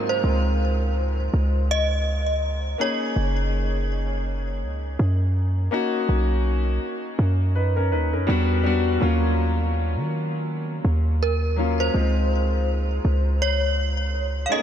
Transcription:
Already playing: G#2 F#3 A#3 C4 D#4 F4 G#4 F5
0.09 C5
0.22 C#2 G#3 C4 D#4 F4
1.34 C#2
1.71 D#5
2.78 A#3 C#4 D#4 G#4 C#5
3.16 F#1
4.63 C#2
4.99 F#2
5.71 A#3 C#4 D#4 F#4
6.09 B1
7.19 F#2
7.55 D#4 B4
7.76 C#4 A#4
7.92 D#2 D#4 B4
8.13 F#2 C#4 A#4
8.27 E2 G3 B3 D4 F#4
8.64 G3 B3 D4 F#4
9.00 D#2 F#3 A#3 C#4 F4
9.96 D#3
10.85 D#2
11.23 A#4
11.56 F#3 A#3 C#4 F4
11.80 C5
11.93 C#2 G#3 C4 D#4 F4
13.05 C#2
13.42 C#5
14.46 A3 F5
14.50 C#4 D#4 G#4 D#5
14.56 A#3

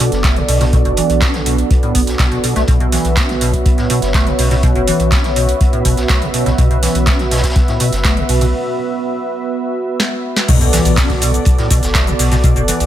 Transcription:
Already playing: B3 F#4 A4 D5
0.00 closed hi-hat
0.12 F#1, snare, closed hi-hat
0.24 A3, kick, snare, clap, closed hi-hat
0.36 B2, closed hi-hat
0.48 B1 B2, open hi-hat
0.61 B2, snare, closed hi-hat
0.73 B2, kick, closed hi-hat
0.85 F#1 B2, closed hi-hat
0.97 E3, closed hi-hat, open hi-hat
1.10 B1, closed hi-hat
1.21 D4, kick, snare, clap, closed hi-hat
1.34 B2, snare, closed hi-hat
1.46 B2, closed hi-hat, open hi-hat
1.58 closed hi-hat
1.70 kick, closed hi-hat
1.83 A2, closed hi-hat
1.95 F#1 B3, kick, closed hi-hat, open hi-hat
2.07 B1, snare, closed hi-hat
2.19 B2, kick, snare, clap, closed hi-hat
2.32 B1 B2, closed hi-hat
2.44 B2, closed hi-hat, open hi-hat
2.56 B1 A3, snare, closed hi-hat
2.67 B1 B2 B4 E5, kick, closed hi-hat
2.80 B2, closed hi-hat
2.92 E3, snare, closed hi-hat, open hi-hat
2.98 C#5
3.05 B1, closed hi-hat
3.16 D4, kick, snare, clap, closed hi-hat
3.29 B2, snare, closed hi-hat
3.41 B2, closed hi-hat, open hi-hat
3.54 kick, closed hi-hat
3.66 kick, closed hi-hat
3.78 A2, snare, closed hi-hat
3.90 B2, closed hi-hat, open hi-hat
4.02 F#1, snare, closed hi-hat
4.14 A3, kick, snare, clap, closed hi-hat
4.27 B2, closed hi-hat
4.39 B1 B2, open hi-hat
4.51 B2, snare, closed hi-hat
4.63 B2, kick, closed hi-hat
4.75 F#1 B2, closed hi-hat
4.87 E3, closed hi-hat, open hi-hat
4.99 B1, closed hi-hat
5.12 D4, kick, snare, clap, closed hi-hat
5.24 B2, snare, closed hi-hat
5.36 B2, closed hi-hat, open hi-hat
5.49 closed hi-hat
5.61 kick, closed hi-hat
5.73 A2, closed hi-hat
5.85 F#1 B2, kick, closed hi-hat, open hi-hat
5.97 B1, snare, closed hi-hat
6.09 A3, kick, snare, clap, closed hi-hat
6.22 B1 B2, closed hi-hat
6.34 B2, closed hi-hat, open hi-hat
6.46 B1 B2, snare, closed hi-hat
6.58 B1 B2, kick, closed hi-hat
6.71 B2, closed hi-hat
6.83 E3, snare, closed hi-hat, open hi-hat
6.95 B1, closed hi-hat
7.06 D4, kick, snare, clap, closed hi-hat
7.19 B2, snare, closed hi-hat
7.31 B2, snare, closed hi-hat, open hi-hat
7.37 snare, closed hi-hat
7.43 kick, snare, closed hi-hat
7.50 snare, closed hi-hat
7.55 kick, closed hi-hat
7.68 A2, snare, closed hi-hat
7.80 B2, closed hi-hat, open hi-hat
7.92 F#1, snare, closed hi-hat
8.04 A3, kick, snare, clap, closed hi-hat
8.17 B2, closed hi-hat
8.29 B1 B2, open hi-hat
8.41 B2, closed hi-hat
10.00 snare
10.36 snare
10.48 B1 B2 B3 F#4 A4 D5, kick, closed hi-hat, crash, impact, cabasa
10.61 B2, closed hi-hat, cabasa
10.73 E3, snare, closed hi-hat, open hi-hat, cabasa
10.85 B1, closed hi-hat, cabasa
10.97 D4, kick, snare, clap, closed hi-hat, cabasa
11.09 B2, kick, snare, closed hi-hat
11.21 B2, closed hi-hat, open hi-hat, cabasa
11.34 closed hi-hat, cabasa
11.45 kick, closed hi-hat, cabasa
11.58 A2, snare, closed hi-hat
11.70 B2, kick, closed hi-hat, open hi-hat, cabasa
11.83 F#1, snare, closed hi-hat, cabasa
11.95 A3, kick, snare, clap, closed hi-hat, cabasa
12.07 B2, closed hi-hat, cabasa
12.19 B1 B2, open hi-hat, cabasa
12.31 B2, snare, closed hi-hat, cabasa
12.44 B2, kick, closed hi-hat, cabasa
12.56 F#1 B2, closed hi-hat, cabasa
12.68 E3, closed hi-hat, open hi-hat, cabasa
12.80 B1, closed hi-hat, cabasa

